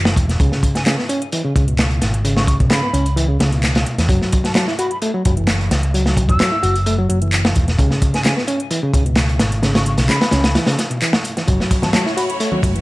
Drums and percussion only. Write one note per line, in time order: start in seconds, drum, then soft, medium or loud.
0.05 snare loud
0.16 kick loud
0.16 closed hi-hat medium
0.29 snare soft
0.29 closed hi-hat soft
0.40 kick loud
0.40 closed hi-hat medium
0.40 closed hi-hat soft
0.52 snare soft
0.63 kick medium
0.63 closed hi-hat medium
0.75 snare soft
0.75 closed hi-hat soft
0.86 snare loud
0.86 clap loud
0.86 closed hi-hat medium
0.86 closed hi-hat soft
0.99 snare soft
1.09 closed hi-hat medium
1.22 closed hi-hat soft
1.32 closed hi-hat medium
1.32 closed hi-hat soft
1.56 kick loud
1.56 closed hi-hat medium
1.68 closed hi-hat soft
1.78 snare loud
1.78 clap loud
1.78 closed hi-hat medium
1.78 closed hi-hat soft
1.91 closed hi-hat soft
2.01 snare medium
2.01 closed hi-hat medium
2.14 closed hi-hat soft
2.25 closed hi-hat medium
2.25 closed hi-hat soft
2.37 snare medium
2.47 kick loud
2.47 closed hi-hat medium
2.60 kick medium
2.60 closed hi-hat soft
2.70 snare loud
2.70 clap loud
2.70 closed hi-hat medium
2.70 closed hi-hat soft
2.94 closed hi-hat medium
3.06 closed hi-hat soft
3.17 closed hi-hat medium
3.17 closed hi-hat soft
3.40 snare loud
3.40 closed hi-hat medium
3.52 closed hi-hat soft
3.63 snare medium
3.63 clap loud
3.63 closed hi-hat soft
3.63 closed hi-hat medium
3.75 snare loud
3.75 closed hi-hat medium
3.86 closed hi-hat soft
3.86 closed hi-hat medium
3.98 snare medium
3.98 closed hi-hat soft
3.98 closed hi-hat medium
4.09 kick loud
4.09 closed hi-hat soft
4.09 closed hi-hat medium
4.22 snare soft
4.32 kick loud
4.32 closed hi-hat medium
4.44 snare soft
4.44 closed hi-hat soft
4.55 snare loud
4.55 clap loud
4.55 closed hi-hat soft
4.55 closed hi-hat loud
4.67 snare soft
4.79 closed hi-hat medium
4.91 closed hi-hat soft
5.02 closed hi-hat medium
5.02 closed hi-hat soft
5.25 kick loud
5.25 closed hi-hat medium
5.37 closed hi-hat soft
5.47 snare loud
5.47 clap loud
5.47 closed hi-hat soft
5.47 closed hi-hat medium
5.61 closed hi-hat soft
5.71 snare medium
5.71 closed hi-hat medium
5.83 closed hi-hat soft
5.94 closed hi-hat soft
5.94 closed hi-hat medium
6.06 snare medium
6.17 kick loud
6.17 closed hi-hat medium
6.29 kick loud
6.29 closed hi-hat soft
6.40 snare loud
6.40 clap loud
6.40 closed hi-hat soft
6.40 closed hi-hat loud
6.63 closed hi-hat medium
6.75 closed hi-hat soft
6.86 closed hi-hat medium
6.86 closed hi-hat soft
7.10 closed hi-hat medium
7.22 closed hi-hat soft
7.32 clap loud
7.32 closed hi-hat medium
7.32 closed hi-hat soft
7.45 snare loud
7.55 kick loud
7.55 closed hi-hat medium
7.68 snare soft
7.68 closed hi-hat soft
7.79 kick loud
7.79 closed hi-hat medium
7.79 closed hi-hat soft
7.91 snare soft
8.02 kick loud
8.02 closed hi-hat medium
8.14 snare soft
8.14 closed hi-hat soft
8.25 snare loud
8.25 clap loud
8.25 closed hi-hat medium
8.25 closed hi-hat soft
8.38 snare soft
8.47 closed hi-hat medium
8.60 closed hi-hat soft
8.71 closed hi-hat medium
8.71 closed hi-hat soft
8.93 kick medium
8.93 closed hi-hat medium
9.06 closed hi-hat soft
9.16 snare loud
9.16 clap loud
9.16 closed hi-hat medium
9.16 closed hi-hat soft
9.29 closed hi-hat soft
9.39 snare loud
9.39 closed hi-hat medium
9.52 closed hi-hat soft
9.63 snare medium
9.63 closed hi-hat soft
9.63 closed hi-hat medium
9.75 snare loud
9.75 closed hi-hat medium
9.85 closed hi-hat soft
9.85 closed hi-hat medium
9.98 snare medium
9.98 closed hi-hat medium
9.98 closed hi-hat soft
10.09 snare medium
10.09 clap loud
10.09 closed hi-hat medium
10.09 closed hi-hat soft
10.21 snare loud
10.21 closed hi-hat medium
10.31 snare loud
10.31 closed hi-hat medium
10.44 snare loud
10.44 closed hi-hat medium
10.44 closed hi-hat soft
10.55 snare loud
10.55 closed hi-hat medium
10.55 closed hi-hat soft
10.66 snare loud
10.66 closed hi-hat medium
10.78 snare medium
10.78 closed hi-hat medium
10.91 closed hi-hat soft
11.01 clap loud
11.01 closed hi-hat medium
11.01 closed hi-hat soft
11.13 snare loud
11.24 closed hi-hat medium
11.37 snare soft
11.37 closed hi-hat soft
11.48 kick loud
11.48 closed hi-hat medium
11.48 closed hi-hat soft
11.60 snare soft
11.71 kick loud
11.71 closed hi-hat medium
11.71 ride medium
11.82 snare soft
11.82 closed hi-hat soft
11.82 low conga medium
11.93 snare loud
11.93 clap loud
11.93 closed hi-hat medium
11.93 closed hi-hat soft
11.93 high conga loud
12.06 snare soft
12.17 closed hi-hat medium
12.17 ride medium
12.30 closed hi-hat soft
12.40 closed hi-hat medium
12.40 closed hi-hat soft
12.52 low conga medium
12.62 kick medium
12.62 closed hi-hat medium
12.62 ride medium
12.62 high conga medium
12.76 closed hi-hat soft